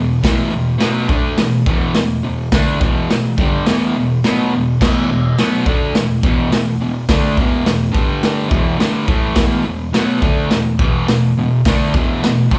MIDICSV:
0, 0, Header, 1, 3, 480
1, 0, Start_track
1, 0, Key_signature, 1, "minor"
1, 0, Tempo, 570342
1, 206, Time_signature, 4, 2, 24, 8
1, 10593, End_track
2, 0, Start_track
2, 0, Title_t, "Distorted electric guitar"
2, 0, Program_c, 0, 30
2, 0, Note_on_c, 0, 40, 67
2, 0, Note_on_c, 0, 47, 76
2, 158, Note_off_c, 0, 40, 0
2, 161, Note_off_c, 0, 47, 0
2, 200, Note_on_c, 0, 40, 88
2, 207, Note_on_c, 0, 47, 96
2, 213, Note_on_c, 0, 52, 101
2, 426, Note_off_c, 0, 40, 0
2, 428, Note_off_c, 0, 47, 0
2, 436, Note_on_c, 0, 40, 67
2, 438, Note_on_c, 0, 47, 69
2, 444, Note_off_c, 0, 52, 0
2, 635, Note_off_c, 0, 40, 0
2, 636, Note_off_c, 0, 47, 0
2, 665, Note_on_c, 0, 47, 100
2, 667, Note_on_c, 0, 54, 92
2, 677, Note_on_c, 0, 59, 115
2, 911, Note_off_c, 0, 47, 0
2, 912, Note_off_c, 0, 54, 0
2, 915, Note_on_c, 0, 50, 91
2, 917, Note_off_c, 0, 59, 0
2, 923, Note_on_c, 0, 57, 102
2, 926, Note_on_c, 0, 62, 104
2, 1156, Note_off_c, 0, 50, 0
2, 1161, Note_off_c, 0, 57, 0
2, 1162, Note_off_c, 0, 62, 0
2, 1165, Note_on_c, 0, 40, 65
2, 1172, Note_on_c, 0, 47, 75
2, 1361, Note_off_c, 0, 40, 0
2, 1364, Note_off_c, 0, 47, 0
2, 1401, Note_on_c, 0, 40, 95
2, 1407, Note_on_c, 0, 47, 91
2, 1412, Note_on_c, 0, 52, 102
2, 1635, Note_off_c, 0, 47, 0
2, 1637, Note_off_c, 0, 40, 0
2, 1645, Note_on_c, 0, 47, 69
2, 1646, Note_off_c, 0, 52, 0
2, 1647, Note_on_c, 0, 40, 62
2, 1841, Note_off_c, 0, 47, 0
2, 1843, Note_off_c, 0, 40, 0
2, 1878, Note_on_c, 0, 40, 68
2, 1884, Note_on_c, 0, 47, 76
2, 2078, Note_off_c, 0, 40, 0
2, 2081, Note_off_c, 0, 47, 0
2, 2133, Note_on_c, 0, 50, 85
2, 2134, Note_on_c, 0, 57, 99
2, 2140, Note_on_c, 0, 62, 96
2, 2361, Note_on_c, 0, 40, 87
2, 2364, Note_off_c, 0, 50, 0
2, 2367, Note_off_c, 0, 57, 0
2, 2368, Note_on_c, 0, 47, 98
2, 2371, Note_off_c, 0, 62, 0
2, 2372, Note_on_c, 0, 52, 115
2, 2601, Note_off_c, 0, 40, 0
2, 2604, Note_off_c, 0, 47, 0
2, 2606, Note_off_c, 0, 52, 0
2, 2610, Note_on_c, 0, 40, 62
2, 2614, Note_on_c, 0, 47, 70
2, 2805, Note_off_c, 0, 40, 0
2, 2807, Note_off_c, 0, 47, 0
2, 2852, Note_on_c, 0, 43, 91
2, 2860, Note_on_c, 0, 50, 85
2, 2861, Note_on_c, 0, 55, 108
2, 3087, Note_off_c, 0, 43, 0
2, 3091, Note_off_c, 0, 50, 0
2, 3092, Note_off_c, 0, 55, 0
2, 3092, Note_on_c, 0, 40, 89
2, 3102, Note_on_c, 0, 47, 99
2, 3102, Note_on_c, 0, 52, 109
2, 3327, Note_off_c, 0, 40, 0
2, 3332, Note_off_c, 0, 47, 0
2, 3332, Note_off_c, 0, 52, 0
2, 3338, Note_on_c, 0, 40, 64
2, 3341, Note_on_c, 0, 47, 68
2, 3529, Note_off_c, 0, 40, 0
2, 3531, Note_off_c, 0, 47, 0
2, 3577, Note_on_c, 0, 47, 92
2, 3582, Note_on_c, 0, 54, 94
2, 3584, Note_on_c, 0, 59, 104
2, 3809, Note_off_c, 0, 47, 0
2, 3812, Note_off_c, 0, 54, 0
2, 3813, Note_off_c, 0, 59, 0
2, 3821, Note_on_c, 0, 40, 64
2, 3824, Note_on_c, 0, 47, 72
2, 4010, Note_off_c, 0, 40, 0
2, 4012, Note_off_c, 0, 47, 0
2, 4045, Note_on_c, 0, 40, 85
2, 4051, Note_on_c, 0, 47, 84
2, 4059, Note_on_c, 0, 52, 92
2, 4283, Note_off_c, 0, 40, 0
2, 4286, Note_off_c, 0, 47, 0
2, 4290, Note_off_c, 0, 52, 0
2, 4291, Note_on_c, 0, 40, 68
2, 4297, Note_on_c, 0, 47, 72
2, 4485, Note_off_c, 0, 40, 0
2, 4488, Note_off_c, 0, 47, 0
2, 4531, Note_on_c, 0, 47, 91
2, 4537, Note_on_c, 0, 54, 96
2, 4542, Note_on_c, 0, 59, 99
2, 4760, Note_off_c, 0, 47, 0
2, 4763, Note_on_c, 0, 50, 89
2, 4769, Note_off_c, 0, 54, 0
2, 4771, Note_off_c, 0, 59, 0
2, 4773, Note_on_c, 0, 57, 101
2, 4779, Note_on_c, 0, 62, 105
2, 5002, Note_off_c, 0, 50, 0
2, 5006, Note_off_c, 0, 57, 0
2, 5009, Note_off_c, 0, 62, 0
2, 5012, Note_on_c, 0, 47, 68
2, 5013, Note_on_c, 0, 40, 65
2, 5205, Note_off_c, 0, 40, 0
2, 5205, Note_off_c, 0, 47, 0
2, 5248, Note_on_c, 0, 40, 90
2, 5255, Note_on_c, 0, 47, 93
2, 5257, Note_on_c, 0, 52, 96
2, 5474, Note_off_c, 0, 40, 0
2, 5477, Note_off_c, 0, 47, 0
2, 5485, Note_on_c, 0, 40, 63
2, 5487, Note_on_c, 0, 47, 73
2, 5488, Note_off_c, 0, 52, 0
2, 5681, Note_off_c, 0, 40, 0
2, 5682, Note_off_c, 0, 47, 0
2, 5730, Note_on_c, 0, 40, 66
2, 5737, Note_on_c, 0, 47, 68
2, 5923, Note_off_c, 0, 40, 0
2, 5926, Note_off_c, 0, 47, 0
2, 5974, Note_on_c, 0, 50, 93
2, 5976, Note_on_c, 0, 57, 97
2, 5979, Note_on_c, 0, 62, 102
2, 6205, Note_off_c, 0, 50, 0
2, 6207, Note_off_c, 0, 57, 0
2, 6208, Note_off_c, 0, 62, 0
2, 6209, Note_on_c, 0, 40, 87
2, 6221, Note_on_c, 0, 52, 105
2, 6222, Note_on_c, 0, 47, 92
2, 6434, Note_off_c, 0, 47, 0
2, 6436, Note_off_c, 0, 40, 0
2, 6444, Note_on_c, 0, 47, 73
2, 6446, Note_on_c, 0, 40, 65
2, 6449, Note_off_c, 0, 52, 0
2, 6639, Note_off_c, 0, 47, 0
2, 6640, Note_off_c, 0, 40, 0
2, 6664, Note_on_c, 0, 43, 92
2, 6667, Note_on_c, 0, 50, 92
2, 6677, Note_on_c, 0, 55, 103
2, 7146, Note_off_c, 0, 43, 0
2, 7149, Note_on_c, 0, 40, 89
2, 7151, Note_off_c, 0, 50, 0
2, 7156, Note_off_c, 0, 55, 0
2, 7158, Note_on_c, 0, 47, 93
2, 7160, Note_on_c, 0, 52, 104
2, 7389, Note_off_c, 0, 40, 0
2, 7393, Note_on_c, 0, 43, 93
2, 7395, Note_off_c, 0, 47, 0
2, 7397, Note_off_c, 0, 52, 0
2, 7398, Note_on_c, 0, 50, 86
2, 7406, Note_on_c, 0, 55, 104
2, 7626, Note_off_c, 0, 50, 0
2, 7629, Note_on_c, 0, 45, 91
2, 7631, Note_off_c, 0, 55, 0
2, 7633, Note_off_c, 0, 43, 0
2, 7635, Note_on_c, 0, 52, 99
2, 7642, Note_on_c, 0, 57, 107
2, 7863, Note_off_c, 0, 52, 0
2, 7863, Note_on_c, 0, 40, 90
2, 7869, Note_off_c, 0, 45, 0
2, 7873, Note_on_c, 0, 47, 89
2, 7873, Note_on_c, 0, 52, 96
2, 7878, Note_off_c, 0, 57, 0
2, 8108, Note_off_c, 0, 40, 0
2, 8111, Note_off_c, 0, 47, 0
2, 8113, Note_off_c, 0, 52, 0
2, 8119, Note_on_c, 0, 40, 68
2, 8121, Note_on_c, 0, 47, 70
2, 8315, Note_off_c, 0, 40, 0
2, 8317, Note_off_c, 0, 47, 0
2, 8359, Note_on_c, 0, 47, 100
2, 8366, Note_on_c, 0, 54, 101
2, 8367, Note_on_c, 0, 59, 112
2, 8596, Note_off_c, 0, 47, 0
2, 8599, Note_off_c, 0, 54, 0
2, 8600, Note_off_c, 0, 59, 0
2, 8601, Note_on_c, 0, 50, 89
2, 8605, Note_on_c, 0, 57, 98
2, 8614, Note_on_c, 0, 62, 99
2, 8837, Note_off_c, 0, 50, 0
2, 8839, Note_off_c, 0, 57, 0
2, 8843, Note_off_c, 0, 62, 0
2, 8844, Note_on_c, 0, 40, 63
2, 8847, Note_on_c, 0, 47, 80
2, 9038, Note_off_c, 0, 40, 0
2, 9039, Note_off_c, 0, 47, 0
2, 9085, Note_on_c, 0, 40, 92
2, 9094, Note_on_c, 0, 47, 96
2, 9099, Note_on_c, 0, 52, 98
2, 9319, Note_off_c, 0, 40, 0
2, 9323, Note_off_c, 0, 47, 0
2, 9326, Note_off_c, 0, 52, 0
2, 9328, Note_on_c, 0, 40, 66
2, 9334, Note_on_c, 0, 47, 72
2, 9520, Note_off_c, 0, 40, 0
2, 9522, Note_off_c, 0, 47, 0
2, 9575, Note_on_c, 0, 40, 63
2, 9582, Note_on_c, 0, 47, 78
2, 9763, Note_off_c, 0, 40, 0
2, 9767, Note_off_c, 0, 47, 0
2, 9821, Note_on_c, 0, 50, 96
2, 9831, Note_on_c, 0, 57, 89
2, 9831, Note_on_c, 0, 62, 93
2, 10047, Note_off_c, 0, 50, 0
2, 10048, Note_on_c, 0, 40, 92
2, 10052, Note_off_c, 0, 57, 0
2, 10052, Note_off_c, 0, 62, 0
2, 10055, Note_on_c, 0, 47, 97
2, 10057, Note_on_c, 0, 52, 99
2, 10281, Note_off_c, 0, 40, 0
2, 10285, Note_off_c, 0, 47, 0
2, 10286, Note_off_c, 0, 52, 0
2, 10290, Note_on_c, 0, 40, 66
2, 10294, Note_on_c, 0, 47, 73
2, 10481, Note_off_c, 0, 40, 0
2, 10483, Note_off_c, 0, 47, 0
2, 10526, Note_on_c, 0, 43, 89
2, 10532, Note_on_c, 0, 50, 97
2, 10536, Note_on_c, 0, 55, 101
2, 10593, Note_off_c, 0, 43, 0
2, 10593, Note_off_c, 0, 50, 0
2, 10593, Note_off_c, 0, 55, 0
2, 10593, End_track
3, 0, Start_track
3, 0, Title_t, "Drums"
3, 199, Note_on_c, 9, 36, 103
3, 204, Note_on_c, 9, 46, 58
3, 208, Note_on_c, 9, 38, 113
3, 283, Note_off_c, 9, 36, 0
3, 288, Note_off_c, 9, 46, 0
3, 292, Note_off_c, 9, 38, 0
3, 674, Note_on_c, 9, 46, 63
3, 678, Note_on_c, 9, 38, 110
3, 759, Note_off_c, 9, 46, 0
3, 762, Note_off_c, 9, 38, 0
3, 918, Note_on_c, 9, 36, 99
3, 1002, Note_off_c, 9, 36, 0
3, 1156, Note_on_c, 9, 46, 61
3, 1160, Note_on_c, 9, 38, 102
3, 1240, Note_off_c, 9, 46, 0
3, 1244, Note_off_c, 9, 38, 0
3, 1400, Note_on_c, 9, 36, 111
3, 1484, Note_off_c, 9, 36, 0
3, 1635, Note_on_c, 9, 46, 67
3, 1639, Note_on_c, 9, 38, 110
3, 1720, Note_off_c, 9, 46, 0
3, 1723, Note_off_c, 9, 38, 0
3, 2118, Note_on_c, 9, 46, 60
3, 2121, Note_on_c, 9, 38, 112
3, 2123, Note_on_c, 9, 36, 103
3, 2202, Note_off_c, 9, 46, 0
3, 2206, Note_off_c, 9, 38, 0
3, 2207, Note_off_c, 9, 36, 0
3, 2364, Note_on_c, 9, 36, 106
3, 2449, Note_off_c, 9, 36, 0
3, 2611, Note_on_c, 9, 46, 62
3, 2614, Note_on_c, 9, 38, 107
3, 2695, Note_off_c, 9, 46, 0
3, 2698, Note_off_c, 9, 38, 0
3, 2844, Note_on_c, 9, 36, 100
3, 2928, Note_off_c, 9, 36, 0
3, 3082, Note_on_c, 9, 46, 57
3, 3085, Note_on_c, 9, 38, 106
3, 3166, Note_off_c, 9, 46, 0
3, 3169, Note_off_c, 9, 38, 0
3, 3568, Note_on_c, 9, 46, 54
3, 3571, Note_on_c, 9, 38, 113
3, 3652, Note_off_c, 9, 46, 0
3, 3655, Note_off_c, 9, 38, 0
3, 4048, Note_on_c, 9, 36, 103
3, 4051, Note_on_c, 9, 49, 97
3, 4054, Note_on_c, 9, 38, 106
3, 4132, Note_off_c, 9, 36, 0
3, 4135, Note_off_c, 9, 49, 0
3, 4138, Note_off_c, 9, 38, 0
3, 4529, Note_on_c, 9, 46, 60
3, 4533, Note_on_c, 9, 38, 109
3, 4613, Note_off_c, 9, 46, 0
3, 4617, Note_off_c, 9, 38, 0
3, 4765, Note_on_c, 9, 36, 102
3, 4849, Note_off_c, 9, 36, 0
3, 5006, Note_on_c, 9, 46, 59
3, 5009, Note_on_c, 9, 38, 107
3, 5090, Note_off_c, 9, 46, 0
3, 5093, Note_off_c, 9, 38, 0
3, 5246, Note_on_c, 9, 36, 112
3, 5330, Note_off_c, 9, 36, 0
3, 5488, Note_on_c, 9, 46, 62
3, 5491, Note_on_c, 9, 38, 106
3, 5572, Note_off_c, 9, 46, 0
3, 5576, Note_off_c, 9, 38, 0
3, 5963, Note_on_c, 9, 46, 67
3, 5965, Note_on_c, 9, 36, 107
3, 5967, Note_on_c, 9, 38, 115
3, 6047, Note_off_c, 9, 46, 0
3, 6049, Note_off_c, 9, 36, 0
3, 6051, Note_off_c, 9, 38, 0
3, 6206, Note_on_c, 9, 36, 102
3, 6290, Note_off_c, 9, 36, 0
3, 6447, Note_on_c, 9, 46, 68
3, 6450, Note_on_c, 9, 38, 108
3, 6531, Note_off_c, 9, 46, 0
3, 6534, Note_off_c, 9, 38, 0
3, 6687, Note_on_c, 9, 36, 94
3, 6771, Note_off_c, 9, 36, 0
3, 6925, Note_on_c, 9, 46, 62
3, 6928, Note_on_c, 9, 38, 101
3, 7009, Note_off_c, 9, 46, 0
3, 7013, Note_off_c, 9, 38, 0
3, 7163, Note_on_c, 9, 36, 111
3, 7247, Note_off_c, 9, 36, 0
3, 7406, Note_on_c, 9, 46, 61
3, 7409, Note_on_c, 9, 38, 116
3, 7490, Note_off_c, 9, 46, 0
3, 7494, Note_off_c, 9, 38, 0
3, 7642, Note_on_c, 9, 36, 105
3, 7726, Note_off_c, 9, 36, 0
3, 7872, Note_on_c, 9, 46, 59
3, 7875, Note_on_c, 9, 38, 119
3, 7878, Note_on_c, 9, 36, 102
3, 7956, Note_off_c, 9, 46, 0
3, 7960, Note_off_c, 9, 38, 0
3, 7963, Note_off_c, 9, 36, 0
3, 8364, Note_on_c, 9, 46, 59
3, 8368, Note_on_c, 9, 38, 113
3, 8449, Note_off_c, 9, 46, 0
3, 8452, Note_off_c, 9, 38, 0
3, 8601, Note_on_c, 9, 36, 105
3, 8686, Note_off_c, 9, 36, 0
3, 8841, Note_on_c, 9, 46, 56
3, 8844, Note_on_c, 9, 38, 102
3, 8925, Note_off_c, 9, 46, 0
3, 8928, Note_off_c, 9, 38, 0
3, 9082, Note_on_c, 9, 36, 108
3, 9167, Note_off_c, 9, 36, 0
3, 9326, Note_on_c, 9, 46, 61
3, 9329, Note_on_c, 9, 38, 113
3, 9410, Note_off_c, 9, 46, 0
3, 9413, Note_off_c, 9, 38, 0
3, 9808, Note_on_c, 9, 36, 114
3, 9809, Note_on_c, 9, 46, 64
3, 9812, Note_on_c, 9, 38, 105
3, 9892, Note_off_c, 9, 36, 0
3, 9893, Note_off_c, 9, 46, 0
3, 9896, Note_off_c, 9, 38, 0
3, 10049, Note_on_c, 9, 36, 101
3, 10133, Note_off_c, 9, 36, 0
3, 10296, Note_on_c, 9, 46, 61
3, 10300, Note_on_c, 9, 38, 114
3, 10380, Note_off_c, 9, 46, 0
3, 10384, Note_off_c, 9, 38, 0
3, 10532, Note_on_c, 9, 36, 105
3, 10593, Note_off_c, 9, 36, 0
3, 10593, End_track
0, 0, End_of_file